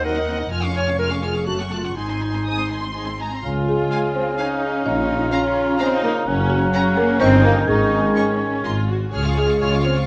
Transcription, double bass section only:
Already playing: D#2
0.51 F1
1.47 F#1
1.96 G#1
3.44 C#2
4.86 A#1
6.26 F#1
7.19 G1
7.67 G#1
8.64 G#1
9.13 C#2
9.61 C#2

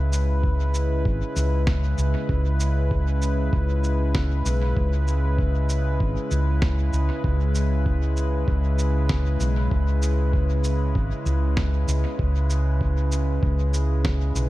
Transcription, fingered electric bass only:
Already playing: C#2
1.05 G#1
1.36 C#2
1.98 C#2
2.29 C#2
3.53 C#2
4.46 B1
4.77 C#2
6.00 G#1
6.31 C#2
6.93 C#2
7.24 C#2
8.48 C#2
9.40 B1
9.71 C#2
10.95 G#1
11.26 C#2
11.88 C#2
12.19 C#2
13.43 C#2
14.35 B1

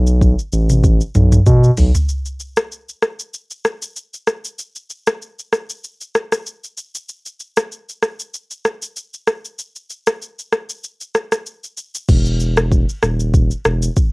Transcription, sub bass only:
Already playing: B1
0.53 A1
1.15 B1
1.47 B2
1.77 B1
12.09 E1
13.03 D#1
13.65 E1

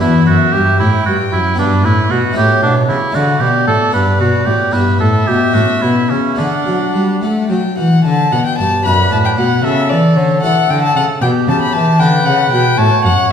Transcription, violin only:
0.01 E5
0.80 G5
1.59 B4
2.36 C#5
3.15 D5
3.94 D5
4.74 E5
6.37 F#5
7.22 F#5
7.50 G5
7.78 F#5
8.04 A5
8.32 F#5
8.45 G5
8.58 A5
8.85 B5
9.12 A5
9.25 G5
9.37 F#5
9.64 E5
9.89 D5
10.16 C#5
10.42 F#5
10.70 G5
10.83 A5
10.96 F#5
11.21 G5
11.48 A5
11.61 B5
11.73 A5
11.99 G5
12.25 F#5
12.51 G5
12.78 A5
13.05 F#5

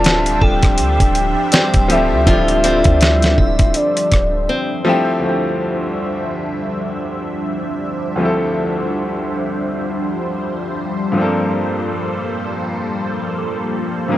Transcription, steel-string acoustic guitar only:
Already playing: D3 G3 C4 F4
1.53 C4
2.27 D3 F4
2.64 G3 C4 F4
4.49 C4

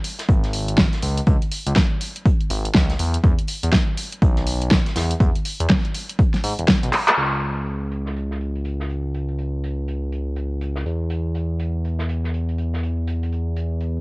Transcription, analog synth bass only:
0.29 G#1
1.03 C#2
1.27 C#2
1.67 C#2
2.50 G#1
2.75 C#2
2.99 E2
3.24 E2
3.63 E2
4.22 B1
4.96 E2
5.21 E2
5.60 E2
6.43 G#2
6.58 E1
6.83 B1
7.17 C#2
10.86 E2

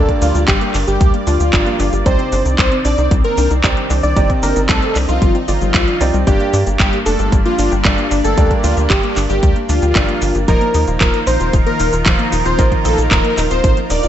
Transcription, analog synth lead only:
0.22 F4
0.48 G4
0.88 G4
1.27 F4
2.06 C5
2.58 C5
2.85 D5
3.24 A#4
4.03 D5
4.43 A#4
4.69 A4
5.09 F4
5.48 F4
6.27 G4
6.80 G4
7.06 A4
7.45 F4
8.24 A4
8.64 F4
8.90 G4
9.30 G4
9.69 F4
10.48 A#4
11.01 A#4
11.27 C5
11.66 A#4
12.45 C5
12.85 A4
13.11 A#4
13.51 C5
13.90 D5

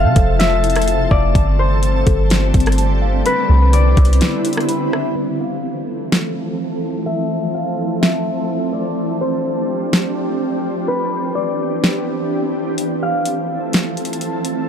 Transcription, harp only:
Already playing: F5
0.39 E5
1.11 D5
1.59 C5
3.26 B4
3.73 D5
5.40 F5
7.06 E5
7.54 F5
8.01 E5
8.73 D5
9.21 C5
10.88 B4
11.35 D5
13.03 F5

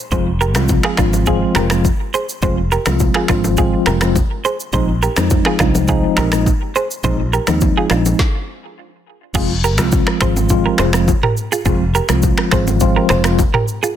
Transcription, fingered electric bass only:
0.12 F1
0.56 C2
0.98 G#1
1.56 F1
2.43 F1
2.86 C2
3.29 G#1
3.87 F1
4.73 A#1
5.17 F2
5.60 C2
6.17 A#1
7.04 A#1
7.48 D#2
7.91 A#1
9.35 F1
9.79 C2
10.21 G#1
10.79 F1
11.66 F1
12.09 C2
12.52 G#1
13.10 F1

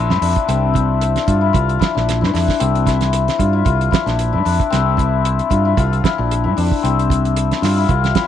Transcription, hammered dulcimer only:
Already playing: C4 D4
0.10 E4
0.22 D4
0.48 C4
0.74 E4
1.27 F4
1.41 E4
1.53 F4
1.79 E4
1.95 D4
2.21 E4
2.33 D4
2.60 C4
2.86 E4
3.38 F4
3.53 E4
3.65 F4
3.91 E4
4.06 D4
4.33 E4
4.45 D4
4.70 C4
4.97 E4
5.50 F4
5.65 E4
5.77 F4
6.04 E4
6.18 D4
6.44 E4
6.57 D4
6.83 C4
7.62 F4
7.76 E4
7.88 F4
8.15 E4

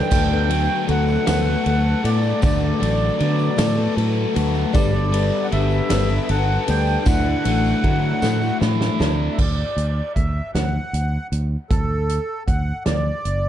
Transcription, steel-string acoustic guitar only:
Already playing: G3 B3 D4 A4
0.11 D3 F#3 A3 B3 A4
0.31 A3 B3 A4
0.49 F#3 A3 B3 A4
0.87 F#3 A3 B3 A4
1.26 D3 F#3 A3 B3 A4
1.47 A3 B3 A4
1.65 F#3 A3 B3 A4
2.02 F#3 A3 B3 A4
2.42 D3 F#3 A3 B3 A4
2.61 A3 B3 A4
2.80 F#3 A3 B3 A4
3.20 F#3 A3 B3 A4
3.56 D3 F#3 A3 B3 A4
3.76 A3 B3 A4
3.95 F#3 A3 B3 A4
4.34 F#3 A3 B3 A4
4.73 G3 B3 D4 A4
4.92 B3 D4 A4
5.11 G3 B3 D4 A4
5.50 G3 B3 D4 A4
5.89 G3 B3 D4 A4
6.08 B3 D4 A4
6.29 G3 B3 D4 A4
6.66 G3 B3 D4 A4
7.04 D3 F#3 A3 D4 E4
7.23 A3 D4 E4
7.44 F#3 A3 D4 E4
7.83 F#3 A3 D4 E4
8.21 D3 F#3 A3 D4 E4
8.41 A3 D4 E4
8.60 F#3 A3 D4 E4
8.98 F#3 A3 D4 E4

